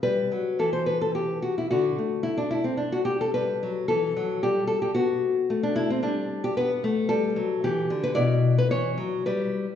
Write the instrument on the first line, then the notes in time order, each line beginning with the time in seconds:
nylon-string guitar
0.03 G3 B4
0.32 F#3
0.59 E3 A4
0.73 C5
0.86 B4
1.01 A4
1.15 G4
1.42 F#4
1.58 E4
1.71 D3 F#4
1.98 A3
2.23 E4
2.38 D4
2.51 E4
2.64 C4
2.77 D4
2.92 F#4
3.05 G4
3.21 A4
3.34 G3 B4
3.63 F#3
3.88 E3 A4
4.17 F#3
4.43 G3 G4
4.67 A4
4.82 G4
4.94 B3 F#4
5.50 A3
5.63 D4
5.76 E4
5.90 C4
6.02 G3 D4
6.44 G4
6.57 B3 B4
6.84 A3
7.09 G3 A4
7.36 F#3
7.64 E3 G4
7.90 D3
8.04 B4
8.15 B2 E4 D5
8.58 B4
8.71 E3 C#5
8.98 F#3
9.26 G3 B4